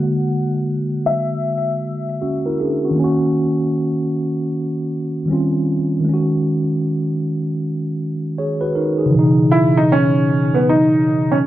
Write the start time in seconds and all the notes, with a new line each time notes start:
Already playing: D3 G#3 A#3 F#4 F#5
1.06 E5
2.22 C#4 F#4
2.46 E4 A#4
2.60 D4 G#4
2.85 C#4 F#4
2.91 D#3
2.95 A#3
2.99 C#4
3.04 F#4
5.26 D#3 G3 C4
5.31 C#4 F4
6.00 D#3
6.05 G#3
6.09 C#4
6.14 F#4
8.38 G#4 C#5
8.61 F#4 B4
8.75 D#4 A#4
8.98 D#4 G#4
9.06 C#3
9.10 E3
9.15 B2
9.19 D#4
9.52 E4
9.77 D#4
9.92 C#4
10.54 B3
10.69 D#4
11.32 C#4